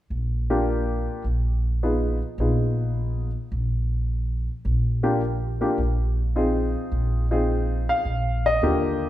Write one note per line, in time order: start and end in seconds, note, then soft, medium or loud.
0.10 1.06 A#1 medium
0.50 1.22 A#3 medium
0.50 1.22 D4 soft
0.50 1.22 F4 medium
0.50 1.22 G4 medium
1.24 2.19 A#1 medium
1.83 2.17 B3 soft
1.83 2.17 D#4 soft
1.83 2.17 F4 soft
1.83 2.17 G#4 medium
2.38 3.33 A#1 medium
2.38 3.27 B3 soft
2.38 3.27 D#4 soft
2.38 3.27 F4 soft
2.38 3.27 G#4 soft
3.52 4.46 A#1 medium
4.65 5.60 A#1 medium
5.03 5.20 A#3 soft
5.03 5.20 D4 soft
5.03 5.20 F4 soft
5.03 5.20 G4 medium
5.61 5.77 A#3 medium
5.61 5.78 D4 soft
5.61 5.78 F4 soft
5.61 5.78 G4 medium
5.78 6.73 A#1 medium
6.36 7.23 C4 soft
6.36 7.23 D#4 soft
6.36 7.23 F4 soft
6.36 7.23 G#4 medium
6.92 7.87 A#1 medium
7.31 8.02 C4 medium
7.31 8.02 D#4 soft
7.31 8.03 F4 soft
7.31 8.03 G#4 medium
7.89 8.47 F5 medium
8.05 8.58 A#1 medium
8.46 9.09 D#5 medium
8.62 9.09 D#2 medium
8.62 9.09 D3 medium
8.62 9.09 A#3 medium
8.62 9.09 F4 medium
8.62 9.09 G4 medium